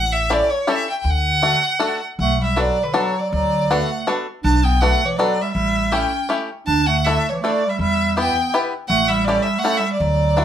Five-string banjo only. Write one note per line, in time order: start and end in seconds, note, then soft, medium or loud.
0.30 0.49 C#4 medium
0.30 0.49 E4 medium
0.30 0.49 G4 medium
0.30 0.49 A4 medium
0.67 0.86 C#4 medium
0.67 0.86 E4 medium
0.67 0.86 G4 medium
0.67 0.87 A4 medium
1.42 1.62 A3 medium
1.42 1.62 D4 medium
1.42 1.62 F#4 medium
1.42 1.62 A4 medium
1.79 1.99 A3 medium
1.79 2.00 D4 medium
1.79 2.00 F#4 medium
1.79 2.00 A4 medium
2.56 2.76 B3 medium
2.56 2.76 D4 medium
2.56 2.77 F#4 medium
2.56 2.77 A4 medium
2.94 3.14 B3 medium
2.94 3.14 D4 medium
2.94 3.14 F#4 medium
2.94 3.14 A4 medium
3.71 3.90 B3 medium
3.71 3.90 D4 medium
3.71 3.90 F#4 medium
3.71 3.90 A4 medium
4.07 4.26 B3 medium
4.07 4.26 D4 medium
4.07 4.26 F#4 medium
4.07 4.26 A4 medium
4.82 5.00 B3 medium
4.82 5.01 D4 medium
4.82 5.01 F#4 medium
4.82 5.01 A4 medium
5.19 5.37 B3 medium
5.19 5.37 D4 medium
5.19 5.37 F#4 medium
5.19 5.38 A4 medium
5.92 6.12 A3 medium
5.92 6.11 C#4 medium
5.92 6.11 E4 medium
5.92 6.11 G4 medium
6.29 6.49 A3 medium
6.29 6.49 C#4 medium
6.29 6.49 E4 medium
6.29 6.49 G4 medium
7.06 7.25 A3 medium
7.06 7.25 D4 medium
7.06 7.25 E4 medium
7.06 7.25 A4 medium
7.44 7.62 A3 medium
7.44 7.62 D4 medium
7.44 7.62 E4 medium
7.44 7.62 A4 medium
8.17 8.36 B3 medium
8.17 8.36 E4 medium
8.17 8.36 G4 medium
8.17 8.36 B4 medium
8.54 8.73 B3 medium
8.54 8.73 E4 medium
8.54 8.73 G4 medium
8.54 8.73 B4 medium
9.28 9.47 C#4 medium
9.28 9.47 E4 medium
9.28 9.47 G4 medium
9.28 9.47 A4 medium
9.64 9.83 C#4 medium
9.64 9.83 E4 medium
9.64 9.83 G4 medium
9.64 9.83 A4 medium
10.37 10.45 D4 medium
10.37 10.45 E4 medium
10.37 10.45 F#4 medium
10.37 10.45 A4 medium